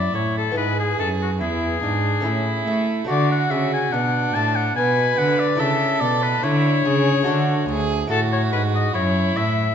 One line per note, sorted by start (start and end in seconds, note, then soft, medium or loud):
0.00 0.10 F#2 medium
0.00 0.13 F#2 medium
0.00 0.50 A3 soft
0.00 0.51 C#4 soft
0.00 0.52 E4 soft
0.00 0.55 E4 medium
0.00 0.13 D5 medium
0.14 0.52 A2 medium
0.14 0.55 A2 medium
0.14 0.35 C#5 medium
0.37 0.57 A4 medium
0.52 2.18 B3 soft
0.52 2.19 E4 soft
0.56 0.94 G#2 medium
0.56 0.98 G#2 medium
0.56 1.39 G#4 medium
0.56 0.78 B4 loud
0.80 0.99 G#4 medium
0.99 1.37 F#2 medium
0.99 1.43 F#2 medium
0.99 1.09 A4 medium
1.22 1.31 F#4 medium
1.41 1.79 E2 medium
1.41 1.82 E2 medium
1.41 1.82 E4 medium
1.41 2.86 G#4 medium
1.83 2.21 G#2 medium
1.83 2.24 G#2 medium
1.83 2.26 D4 medium
2.21 2.66 A3 soft
2.21 3.04 C#4 soft
2.21 3.06 E4 medium
2.25 2.66 A2 medium
2.25 2.63 A2 medium
2.25 3.08 E4 medium
2.67 3.08 A3 medium
2.67 3.03 A3 medium
3.05 3.47 A3 soft
3.05 5.55 F#4 medium
3.09 3.50 D3 medium
3.09 3.47 D3 medium
3.09 3.94 F#4 medium
3.09 3.29 D5 loud
3.32 3.52 F#5 medium
3.51 3.92 C#3 medium
3.51 3.89 C#3 medium
3.51 3.72 E5 medium
3.73 3.94 G#5 medium
3.92 4.34 B2 medium
3.92 4.31 B2 medium
3.92 4.76 D4 medium
3.92 4.36 F#5 medium
4.35 4.76 A2 medium
4.35 4.73 A2 medium
4.35 4.57 A5 loud
4.56 4.75 F#5 medium
4.76 5.18 B2 medium
4.76 5.15 B2 medium
4.76 5.61 B4 medium
4.76 5.20 G#5 loud
5.18 5.59 D3 medium
5.18 5.56 D3 medium
5.18 5.41 F#5 medium
5.40 5.61 D5 medium
5.55 7.21 A3 medium
5.55 7.21 E4 medium
5.55 7.22 A4 medium
5.60 5.98 C#3 medium
5.60 6.02 C#3 medium
5.60 6.45 A4 medium
5.60 6.02 E5 loud
6.01 6.42 B2 medium
6.01 6.39 B2 medium
6.01 6.24 D5 medium
6.23 6.45 B4 medium
6.43 6.84 D3 medium
6.43 6.81 D3 medium
6.43 6.87 E4 medium
6.43 7.90 C#5 loud
6.85 7.26 C#3 medium
6.85 7.23 C#3 medium
6.85 7.29 G#4 medium
7.23 8.06 A3 medium
7.23 8.07 F#4 medium
7.23 8.08 A4 medium
7.27 7.68 D3 medium
7.27 7.65 D3 medium
7.27 7.68 F#4 medium
7.69 8.07 D2 medium
7.69 8.10 D2 medium
7.69 8.09 G#4 medium
8.07 8.49 A2 medium
8.07 8.54 A2 medium
8.07 9.73 E4 medium
8.07 8.96 F#4 medium
8.07 9.74 A4 medium
8.07 8.20 A4 loud
8.33 8.42 C#5 medium
8.53 8.94 G#2 medium
8.53 8.91 G#2 medium
8.53 8.62 B4 medium
8.75 8.94 D#5 medium
8.95 9.33 F#2 medium
8.95 9.36 F#2 medium
8.95 9.75 E4 medium
8.95 9.39 C#5 loud
9.37 9.75 A2 medium
9.37 9.75 E5 medium